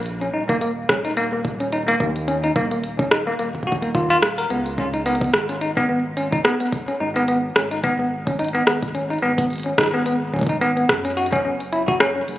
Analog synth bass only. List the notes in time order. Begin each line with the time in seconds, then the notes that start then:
Already playing: A#1
0.34 D#1
0.89 D#1
2.00 D#2
2.56 D#1
3.11 D#1
3.39 D#1
3.95 D#2
4.23 D#1
4.50 C#2
5.34 G#1
7.00 G#1
7.56 G#1
8.67 G#1
9.23 G#1
9.78 G#1
10.89 F#2
11.45 F#1
12.00 F#1
12.28 F#1